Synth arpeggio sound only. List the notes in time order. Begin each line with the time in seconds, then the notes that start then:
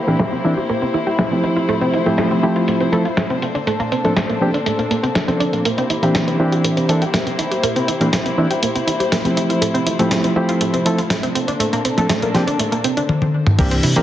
0.08 A#3
0.20 A#3
0.32 C4
0.45 E4
0.57 G4
0.69 A#3
0.82 C4
0.94 E4
1.07 G4
1.19 A#3
1.32 C4
1.44 E4
1.57 F4
1.69 A3
1.81 C4
1.94 E4
2.06 A3
2.18 A3
2.31 C4
2.43 E4
2.56 F4
2.68 A3
2.81 C4
2.93 E4
3.05 F4
3.17 A3
3.30 C4
3.42 C4
3.55 D4
3.67 A3
3.80 A#3
3.92 C4
4.05 A3
4.17 A3
4.29 A#3
4.41 C4
4.54 D4
4.66 A3
4.79 A#3
4.91 A#3
5.03 C4
5.15 D4
5.28 C4
5.40 D4
5.53 A#3
5.65 A#3
5.78 C4
5.90 E4
6.03 A#3
6.15 A#3
6.27 C4
6.40 E4
6.52 G4
6.64 A#3
6.77 C4
6.89 E4
7.02 G4
7.14 A#3
7.27 C4
7.39 E4
7.51 G4
7.63 A#3
7.76 C4
7.88 E4
8.01 A#3
8.13 A#3
8.26 C4
8.38 E4
8.51 G4
8.63 A#3
8.75 C4
8.87 E4
9.00 G4
9.12 A#3
9.25 C4
9.37 E4
9.50 F4
9.62 A3
9.74 C4
9.86 E4
9.99 A3
10.11 A3
10.24 C4
10.36 E4
10.49 F4
10.61 A3
10.74 C4
10.86 E4
10.99 F4
11.11 A3
11.23 C4
11.35 C4
11.48 D4
11.60 A3
11.73 A#3
11.85 C4
11.98 A3
12.10 A3
12.22 A#3
12.34 C4
12.47 D4
12.59 A3
12.72 A#3
12.84 C4
12.97 D4
13.59 A#3
13.71 C4
13.83 E4
13.96 A#3